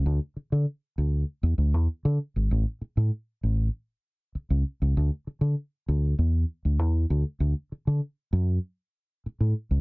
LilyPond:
\new Staff \with { instrumentName = "Fingered electric bass" } { \clef bass \time 4/4 \key d \lydian \tempo 4 = 98 d,16 r8 d16 r8 d,8 r16 e,16 d,16 e,16 r16 d16 r16 gis,,16 | a,,16 r8 a,16 r8 a,,8 r4 r16 cis,16 r16 cis,16 | d,16 r8 d16 r8 d,8 e,8 r16 d,16 e,8 d,16 r16 | d,16 r8 d16 r8 fis,8 r4 r16 a,16 r16 cis,16 | }